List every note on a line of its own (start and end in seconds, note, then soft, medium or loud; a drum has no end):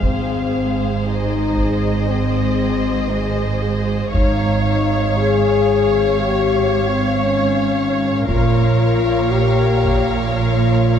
0.00 4.10 G#1 soft
0.00 4.10 G#2 soft
0.00 0.89 C4 medium
0.00 4.10 G#4 soft
0.00 4.10 C5 soft
0.00 1.02 F5 soft
0.00 taiko soft
1.06 2.06 D#4 medium
1.06 4.14 D#5 soft
1.57 taiko soft
2.08 3.11 C4 medium
3.10 3.45 G#3 medium
4.13 8.24 G#1 medium
4.13 8.24 G#2 soft
4.13 5.15 D#4 medium
4.13 8.24 C#5 soft
4.13 8.25 F5 soft
4.13 taiko soft
5.18 6.22 G#4 medium
6.20 6.88 G4 medium
6.89 7.24 C4 medium
7.24 8.28 C#4 medium
8.27 10.99 A#1 medium
8.27 10.99 A#2 medium
8.27 9.32 F4 medium
8.27 10.99 A#4 soft
8.27 10.99 C#5 medium
8.27 10.99 F5 medium
8.27 taiko soft
9.32 10.21 G4 medium
9.85 taiko soft
10.38 10.99 F4 medium